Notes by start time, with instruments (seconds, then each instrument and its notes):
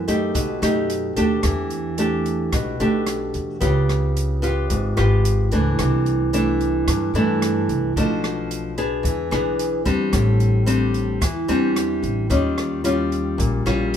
Already playing: upright bass F#2, nylon-string guitar F#2
0.08 nylon-string guitar A3 D#4 G4, kick, closed hi-hat
0.34 upright bass B1, nylon-string guitar B2, kick, closed hi-hat
0.62 upright bass F#2, nylon-string guitar A3 D#4 G4, cross-stick, closed hi-hat
0.90 closed hi-hat
1.16 upright bass D#2, nylon-string guitar A3 D4 G4, kick, closed hi-hat
1.43 upright bass E2, nylon-string guitar E3, kick, cross-stick, closed hi-hat
1.70 closed hi-hat
1.98 nylon-string guitar A3 D4 G4, closed hi-hat
2.26 closed hi-hat
2.52 upright bass B1, nylon-string guitar B2, kick, cross-stick, closed hi-hat
2.80 upright bass B1, nylon-string guitar A3 D4 G4, closed hi-hat
3.06 cross-stick, closed hi-hat
3.34 upright bass E2, closed hi-hat
3.61 upright bass C#2, nylon-string guitar C#3 B3 F4 G4, kick, closed hi-hat
3.89 cross-stick, closed hi-hat
4.17 closed hi-hat
4.42 nylon-string guitar B3 F4 G4, closed hi-hat
4.70 upright bass G#1, nylon-string guitar G#2, kick, closed hi-hat
4.97 upright bass G#1, nylon-string guitar B3 F4 G4, cross-stick, closed hi-hat
5.25 closed hi-hat
5.51 upright bass C#2, nylon-string guitar E3 A3 D4, closed hi-hat
5.79 upright bass C2, nylon-string guitar C3, kick, cross-stick, closed hi-hat
6.06 closed hi-hat
6.33 nylon-string guitar E3 A3 D4, closed hi-hat
6.61 closed hi-hat
6.88 upright bass G2, nylon-string guitar G2, kick, cross-stick, closed hi-hat
7.14 upright bass G2, nylon-string guitar E3 A3 D4, closed hi-hat
7.42 cross-stick, closed hi-hat
7.69 upright bass C2, closed hi-hat
7.96 upright bass B1, nylon-string guitar B2 F3 A3 D4, kick, closed hi-hat
8.24 cross-stick, closed hi-hat
8.51 closed hi-hat
8.78 nylon-string guitar B3 D4 G#4, closed hi-hat
9.03 upright bass E2, nylon-string guitar E3, kick, closed hi-hat
9.31 upright bass B1, nylon-string guitar B3 D4 G#4, cross-stick, closed hi-hat
9.59 closed hi-hat
9.85 upright bass E2, nylon-string guitar G3 C4 D4, kick, closed hi-hat
10.13 upright bass A1, nylon-string guitar A2, kick, cross-stick, closed hi-hat
10.40 closed hi-hat
10.66 nylon-string guitar G3 C4 D4, closed hi-hat
10.94 closed hi-hat
11.21 upright bass E2, nylon-string guitar E3, kick, cross-stick, closed hi-hat
11.48 upright bass E2, nylon-string guitar G3 C4 D4, closed hi-hat
11.76 cross-stick, closed hi-hat
12.03 upright bass A1, closed hi-hat
12.30 upright bass D#2, nylon-string guitar D#3 G3 C#4 F4, kick, closed hi-hat
12.58 cross-stick, closed hi-hat
12.84 nylon-string guitar G3 C#4 F4, closed hi-hat
13.12 closed hi-hat
13.38 upright bass A#1, nylon-string guitar A#2, kick, closed hi-hat
13.66 upright bass A#1, nylon-string guitar G3 C#4 F4, cross-stick, closed hi-hat
13.94 closed hi-hat